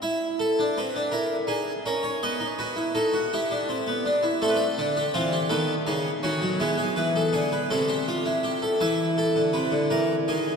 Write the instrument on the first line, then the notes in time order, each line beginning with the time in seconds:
harpsichord
0.02 E4 E5
0.39 A4
0.59 D4
0.77 C4 B4
0.96 D4
1.12 E4 A#4
1.47 D#4 G#4
1.86 C#4 A#4
2.03 C#5
2.23 B3 D#5
2.40 D#4
2.59 F#4 B4
2.76 E4
2.95 D#4 A4
3.13 F#4
3.33 E4 G4
3.51 D4
3.69 C4
3.87 B3
4.05 D4
4.23 E4
4.42 A3 C4 A4
4.49 B4
4.56 A4
4.78 D3 D4
4.97 G4
5.14 E3 C4 F4
5.32 G4
5.49 D#3 B3 A4
5.87 C#3 D#4 G#4
6.23 D#3 C#4 F#4
6.42 F#3
6.60 G#3 B3 E4
6.78 G#4
6.96 E3 B4
7.16 A4
7.33 D3 G#4
7.52 B4
7.70 C3 C4 A4
7.88 G4
8.08 F4
8.25 E4
8.43 G4
8.62 A4
8.80 E3 E4 E5
9.18 A4
9.36 D3
9.53 C3 B4
9.72 D3
9.90 E3 A#4
10.28 D#3 G#4